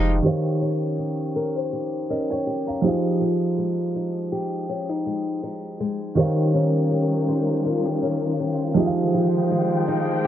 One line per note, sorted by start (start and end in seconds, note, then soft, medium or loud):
0.00 0.21 F1 loud
0.00 0.21 D#3 medium
0.00 0.24 F3 medium
0.00 0.21 G#3 medium
0.00 0.33 G#3 medium
0.00 0.22 D#4 medium
0.00 0.61 D#4 medium
0.00 0.21 F4 medium
0.00 0.23 G4 medium
0.00 0.64 G4 medium
0.00 0.25 G#4 medium
0.00 0.26 F5 medium
0.00 0.21 G5 medium
0.22 2.79 D#3 medium
0.22 2.84 D#3 medium
0.22 2.79 D#4 medium
0.22 2.80 G4 medium
0.22 2.07 C5 medium
0.27 2.07 C#5 medium
0.27 2.08 F5 medium
0.61 2.09 C#4 medium
0.99 1.72 G4 medium
1.36 1.56 A#4 medium
1.56 2.92 C5 soft
1.73 2.46 G4 medium
2.10 2.92 C#4 medium
2.10 2.29 A#4 medium
2.10 2.29 D#5 medium
2.30 2.66 C#5 medium
2.30 2.65 G5 medium
2.47 3.24 G4 medium
2.67 2.86 F5 soft
2.67 3.02 A#5 medium
2.82 5.75 F3 medium
2.82 3.21 F3 medium
2.82 5.76 D#4 medium
2.82 5.76 G4 medium
2.86 5.77 G#4 medium
2.86 5.78 F5 medium
3.21 6.17 F3 medium
3.58 5.05 G#3 medium
3.95 4.69 D#4 medium
4.32 6.57 G4 medium
4.69 4.89 C#4 medium
4.89 5.42 D#4 soft
5.06 5.79 G#3 medium
5.43 6.54 D#4 medium
5.80 6.25 G#3 medium
6.15 8.71 D#3 medium
6.15 10.27 D#3 medium
6.15 8.76 D#3 medium
6.15 8.74 G3 medium
6.15 8.74 C#4 medium
6.15 8.72 D#4 medium
6.15 10.27 F4 medium
6.15 8.72 G4 medium
6.15 8.74 A#4 medium
6.15 8.73 C5 medium
6.19 8.74 C#5 medium
6.19 8.74 F5 medium
6.54 8.01 C#4 medium
6.91 7.65 G4 medium
7.28 10.27 C5 medium
7.65 7.85 F4 medium
7.85 8.38 G4 medium
8.02 8.84 C#4 medium
8.40 9.17 G4 medium
8.74 10.27 F3 medium
8.74 9.13 F3 medium
8.74 10.27 G#3 medium
8.74 10.27 D#4 medium
8.74 10.27 G4 medium
8.74 10.27 G5 medium
8.79 10.27 G#4 medium
8.79 8.85 E5 medium
8.86 10.27 F5 medium
9.14 10.27 F3 medium
9.51 10.27 G#3 medium
9.88 10.27 D#4 medium